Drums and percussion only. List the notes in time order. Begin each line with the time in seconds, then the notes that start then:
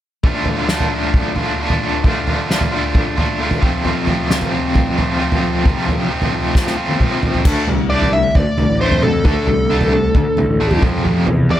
0.24 kick, floor tom
0.45 floor tom
0.69 snare
0.80 floor tom
1.14 kick, floor tom
1.36 floor tom
1.70 floor tom
2.04 kick, floor tom
2.27 floor tom
2.51 snare
2.61 floor tom
2.95 kick, floor tom
3.18 floor tom
3.51 floor tom
3.63 kick
3.85 floor tom
4.07 floor tom
4.31 snare
4.41 floor tom
4.75 kick, floor tom
4.98 floor tom
5.32 floor tom
5.66 kick, floor tom
5.88 floor tom
6.22 floor tom
6.55 kick, snare
6.67 snare
6.89 high tom
7.00 kick, mid tom
7.23 floor tom
7.34 floor tom
7.45 kick, floor tom, crash
7.67 floor tom
8.02 floor tom
8.35 kick, floor tom
8.57 floor tom
8.92 floor tom
9.03 mid tom
9.25 kick, floor tom
9.47 floor tom
9.81 floor tom
10.15 kick, floor tom
10.37 floor tom
10.71 floor tom
10.82 kick, mid tom
11.05 floor tom
11.27 floor tom